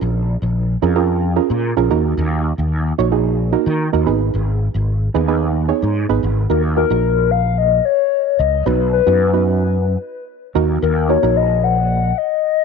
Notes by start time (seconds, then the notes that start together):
Already playing: C#4 F4 G#4 A#4
0.01 A#1
0.42 A#1
0.82 F2 C#4 F4 G#4 A#4
0.95 C#4 F4 G#4 A#4
1.36 C#4 F4 G#4 A#4
1.50 A#2
1.77 A#1 C#4 F4 G#4 A#4
1.90 D#2 A#3 D#4 F#4 A#4
2.17 D#2
2.58 D#2
2.98 A#1 A#3 D#4 F#4 C#5
3.12 A#3 D#4 F#4 G#4
3.52 A#3 D#4 F#4 A#4
3.66 D#3
3.93 D#2 A#3 D#4 F#4 A#4
4.06 G#1 B3 D#4 G#4 B4
4.34 G#1
4.74 G#1
5.14 D#2 B3 D#4 G#4 B4
5.28 B3 D#4 G#4 B4
5.68 B3 D#4 G#4 C#5
5.82 G#2
6.09 G#1 B3 D#4 G#4 B4
6.23 G#1
6.50 D#2 A#3 D#4 F#4 A#4
6.77 A#3 D#4 F#4 A#4
6.90 A#1 A#3 D#4 F#4 A#4
7.31 F5
7.58 D#5
7.85 C#5
8.39 C#2 D#5
8.66 B1 B3 D#4 F#4 B4
8.93 B4
9.06 F#2 B3 D#4 F#4 B4
9.33 B3 D#4 F#4 B4
9.47 B4
10.55 D#2 A#3 D#4 F#4 A#4
10.82 D#2 A#4
11.09 A#3 D#4 F#4 A#4 C#5
11.23 A#1 A#3 D#4 F#4 A#4
11.37 D#5
11.64 F#5
12.18 D#5